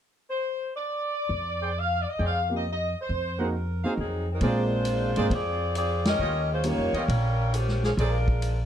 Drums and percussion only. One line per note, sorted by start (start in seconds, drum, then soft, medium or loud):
4.41 kick soft
4.41 ride medium
4.85 hi-hat pedal soft
4.85 ride medium
5.16 ride soft
5.30 kick soft
5.30 ride medium
5.75 hi-hat pedal medium
5.75 ride medium
6.05 snare medium
6.05 ride medium
6.64 hi-hat pedal soft
6.64 ride medium
6.94 ride soft
7.08 kick soft
7.08 ride medium
7.54 hi-hat pedal medium
7.54 ride medium
7.68 snare soft
7.83 snare soft
7.97 kick soft
7.97 ride medium
8.28 kick medium
8.42 hi-hat pedal medium
8.42 ride medium